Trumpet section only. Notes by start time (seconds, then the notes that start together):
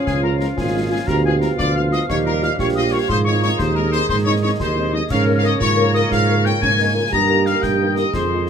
0.06 G#4
0.23 A#4
0.40 A#4
0.57 G#4
0.91 G#4
1.08 A#4
1.27 G#4
1.41 A#4
1.58 D5
1.75 F5
1.92 D#5
2.10 C#5
2.26 A#4
2.44 F5
2.59 C#5
2.77 D#5
2.92 C#5
3.10 C5
3.26 C#5
3.42 C#5
3.58 C5
3.75 A#4
3.92 C5
4.09 C5
4.25 C#5
4.42 C#5
4.61 C5
4.94 D#5
5.11 F5
5.38 F5
5.44 D#5
5.60 C#5
5.94 D#5
6.12 F5
6.45 G5
6.62 G#5
7.12 A#5
7.46 F5
7.63 G5
7.98 D#5
8.14 C5